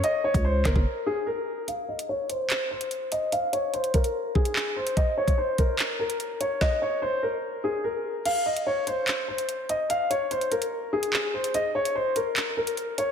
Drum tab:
CC |----------------|----------------|----------------|----------------|
HH |x--x--x---------|x--x--x-x--xx-x-|x-x-xxxx---x---x|x--x--x-x--xx-x-|
CP |------x---------|--------x-------|------------x---|--------x-------|
SD |------r---------|----------------|----------------|----------------|
BD |---o--oo--------|----------------|------o---o-----|o--o--o---------|

CC |----------------|x---------------|----------------|----------------|
HH |----------------|x--x--x-x--xx-x-|x-x-xxxx---x---x|x--x--x-x--xx-x-|
CP |----------------|--------x-------|------------x---|--------x-------|
SD |o---------------|----------------|----------------|----------------|
BD |o---------------|----------------|----------------|----------------|